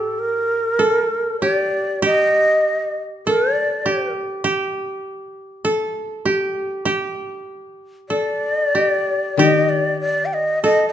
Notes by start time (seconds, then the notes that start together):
Already playing: A2 G4 A4
0.19 A#4
0.79 A4
1.41 G4 C#5
1.52 D5
2.02 G4 D#5
3.27 A4 A#4
3.55 D5
3.86 G4
4.44 G4
5.65 A4
6.25 G4
6.85 G4
8.09 A4 D5
8.75 G4
9.37 D#3 G4 D#5
9.69 D5
10.01 D5
10.26 G5
10.34 D#5
10.63 A4 D#5
10.89 D#5